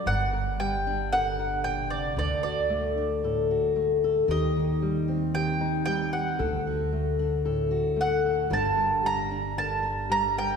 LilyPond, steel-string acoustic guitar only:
\new Staff \with { instrumentName = "Steel-string acoustic guitar" } { \time 4/4 \key g \minor \tempo 4 = 114 << { bes'8 bes'4 d'8 bes'8 bes'4. | a'8 fis'4 d'8 a'8 fis'4 a'8 | g'8 ees'4 c'8 g'8 ees'4 g'8 | a'8 fis'4 d'8 a'8 fis'4 a'8 |
<g d' bes'>8 bes'4 d'8 bes'8 bes'4 bes'8 | } \\ { g,4 g4 d4 bes,8 c8 | d4 a4 a,4 a4 | ees4 g4 ees4 g4 | d4 a4 a,4 a4 |
g,4 g4 d4 g4 | } >> }